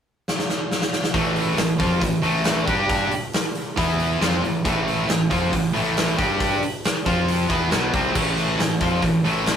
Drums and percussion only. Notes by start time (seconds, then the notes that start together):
0.28 snare
0.39 snare
0.49 snare
0.71 snare
0.82 snare
0.93 snare
1.04 snare
1.14 kick, open hi-hat
1.36 open hi-hat
1.57 snare, open hi-hat
1.80 kick, open hi-hat
2.01 kick, open hi-hat
2.23 open hi-hat
2.44 snare, open hi-hat
2.67 kick, open hi-hat
2.90 kick, open hi-hat
3.11 open hi-hat
3.33 snare, open hi-hat
3.55 open hi-hat
3.77 kick, open hi-hat
3.99 open hi-hat
4.21 snare, open hi-hat
4.44 open hi-hat
4.65 kick, open hi-hat
4.88 open hi-hat
5.09 snare, open hi-hat
5.31 kick, open hi-hat
5.53 kick, open hi-hat
5.76 open hi-hat
5.97 snare, open hi-hat
6.19 kick, open hi-hat
6.40 kick, open hi-hat
6.63 open hi-hat
6.84 snare, open hi-hat
7.06 kick, open hi-hat
7.28 open hi-hat
7.50 kick, open hi-hat
7.71 snare, open hi-hat
7.94 kick, open hi-hat
8.15 kick, crash
8.37 open hi-hat
8.59 snare, open hi-hat
8.81 kick, open hi-hat
9.02 kick, open hi-hat
9.25 open hi-hat
9.46 snare, open hi-hat